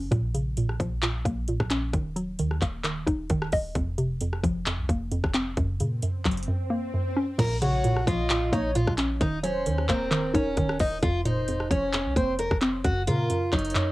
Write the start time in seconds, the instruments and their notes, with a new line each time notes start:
Already playing: 808-style bass F#1, synth pluck F#2 F#3 A#3 C#4
0.11 808-style bass A#1, synth pluck A#2, kick, closed hi-hat
0.35 synth pluck C#3, closed hi-hat
0.57 synth pluck A#2, closed hi-hat
0.69 cross-stick
0.80 808-style bass A#1, synth pluck F3, kick, closed hi-hat
1.03 synth pluck A#2, clap, closed hi-hat
1.25 808-style bass A#1, synth pluck A#3, kick, closed hi-hat
1.48 synth pluck A#2, closed hi-hat
1.60 808-style bass A#1, kick, cross-stick
1.70 synth pluck C#4, clap, closed hi-hat
1.93 808-style bass D#1, synth pluck D#3, kick, closed hi-hat
2.16 synth pluck F#3, closed hi-hat
2.39 808-style bass D#2, synth pluck D#3, closed hi-hat
2.51 cross-stick
2.62 808-style bass D#1, synth pluck A#3, kick, clap, closed hi-hat
2.84 synth pluck D#3, clap, closed hi-hat
3.07 808-style bass D#1, synth pluck D#4, kick, closed hi-hat
3.30 808-style bass D#1, synth pluck D#3, kick, closed hi-hat
3.42 cross-stick
3.52 808-style bass D#1, synth pluck D#5, kick, open hi-hat
3.75 808-style bass F1, synth pluck F2, kick, closed hi-hat
3.98 synth pluck C3, closed hi-hat
4.21 synth pluck F2, closed hi-hat
4.33 cross-stick
4.43 808-style bass F1, synth pluck F3, kick, closed hi-hat
4.66 synth pluck F2, clap, closed hi-hat
4.78 808-style bass C2
4.89 808-style bass F1, synth pluck A#3, kick, closed hi-hat
5.12 synth pluck F2, closed hi-hat
5.24 808-style bass F1, kick, cross-stick
5.34 synth pluck C4, clap, closed hi-hat
5.57 808-style bass F#1, synth pluck F#2, kick, closed hi-hat, swell
5.80 808-style bass A#2, synth pluck C#3, closed hi-hat
6.02 synth pluck F#2, closed hi-hat
6.25 808-style bass F#1, synth pluck F#3, kick, clap, closed hi-hat
6.31 closed hi-hat
6.37 closed hi-hat
6.43 closed hi-hat
6.48 synth pluck F#2
6.70 synth pluck A#3
6.94 synth pluck F#2
7.17 synth pluck C#4
7.38 808-style bass A#1, synth pluck A#2, steel-string acoustic guitar A#4, kick, closed hi-hat, crash, impact
7.62 synth pluck C#3, steel-string acoustic guitar F#4, soft synth lead C#5, closed hi-hat
7.84 synth pluck A#2, closed hi-hat
7.97 cross-stick
8.07 808-style bass A#1, synth pluck F3, steel-string acoustic guitar F4, soft synth lead D#5, kick, closed hi-hat
8.30 synth pluck A#2, clap, closed hi-hat
8.52 808-style bass A#1, synth pluck A#3, steel-string acoustic guitar D#4, soft synth lead C#5, kick, closed hi-hat
8.75 synth pluck A#2, steel-string acoustic guitar F4, closed hi-hat
8.87 808-style bass A#1, kick, cross-stick
8.98 synth pluck C#4, clap, closed hi-hat
9.21 808-style bass D#1, synth pluck D#3, steel-string acoustic guitar D#4, kick, closed hi-hat
9.43 synth pluck F#3, steel-string acoustic guitar C#4, soft synth lead C5, closed hi-hat
9.66 808-style bass D#2, synth pluck D#3, closed hi-hat
9.78 cross-stick
9.89 808-style bass D#1, synth pluck A#3, steel-string acoustic guitar C4, soft synth lead A#4, kick, clap, closed hi-hat
10.11 synth pluck D#3, clap, closed hi-hat
10.34 808-style bass D#1, steel-string acoustic guitar C#4, synth pluck D#4, kick, closed hi-hat
10.57 808-style bass D#1, synth pluck D#3, kick, closed hi-hat
10.69 cross-stick
10.79 808-style bass D#1, steel-string acoustic guitar D#4, synth pluck D#5, kick, open hi-hat
11.03 808-style bass F1, synth pluck F2, steel-string acoustic guitar F4, kick, closed hi-hat
11.25 synth pluck A#2, steel-string acoustic guitar D#4, soft synth lead C5, closed hi-hat
11.48 synth pluck F2, closed hi-hat
11.60 cross-stick
11.71 808-style bass F1, synth pluck F3, steel-string acoustic guitar C#4, soft synth lead C#5, kick, closed hi-hat
11.93 synth pluck F2, clap, closed hi-hat
12.06 808-style bass C2
12.16 808-style bass F1, synth pluck A#3, steel-string acoustic guitar C4, soft synth lead C5, kick, closed hi-hat
12.39 synth pluck F2, steel-string acoustic guitar A#4, closed hi-hat
12.51 808-style bass F1, kick, cross-stick
12.61 synth pluck C4, clap, closed hi-hat
12.84 808-style bass F#1, synth pluck F#2, steel-string acoustic guitar F#4, kick, closed hi-hat
13.07 808-style bass A#2, synth pluck C#3, steel-string acoustic guitar F4, soft synth lead A#4, closed hi-hat
13.30 synth pluck F#2, closed hi-hat
13.52 808-style bass F#1, synth pluck F#3, steel-string acoustic guitar D#4, soft synth lead C#5, kick, clap, closed hi-hat
13.59 closed hi-hat
13.65 closed hi-hat
13.70 closed hi-hat
13.75 synth pluck F#2, clap, closed hi-hat